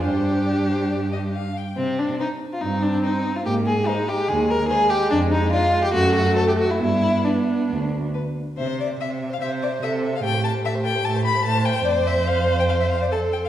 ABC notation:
X:1
M:4/4
L:1/16
Q:1/4=143
K:Gphr
V:1 name="Violin"
c4 d2 c2 d2 e2 f2 g2 | z4 c4 z4 c4 | z4 c4 z4 c4 | z4 d4 z4 c4 |
z4 =B4 z4 B4 | [K:C] c2 d2 e3 f e2 d2 e3 f | g2 a2 e2 g2 a2 b2 a2 g2 | d2 e2 f3 g f e f d a2 g f |]
V:2 name="Violin"
G12 z4 | C2 D2 E3 F E2 D2 E3 F | G2 A2 E2 G2 A2 B2 A2 G2 | D2 E2 F3 G ^F2 F2 =A G F =E |
=E4 D8 z4 | [K:C] e c e c e c e c e c e c e c e c | A c A c A c A c A c A c A c A c | c4 c4 c4 c4 |]
V:3 name="Viola"
D12- D2 z2 | z8 C8 | B,4 A,8 A,4- | A,8 =A,8 |
=B,12- B,2 z2 | [K:C] z8 c4 A4 | G12 c4- | c12 A4 |]
V:4 name="Cello" clef=bass
G,,8 G,,6 z2 | C,4 z4 G,,4 z4 | A,,4 z4 E,,4 z4 | F,,4 z4 ^F,,4 z4 |
G,,4 z4 D,,4 z4 | [K:C] C,4 C,4 C,4 C,4 | A,,4 A,,4 A,,4 A,,4 | F,,16 |]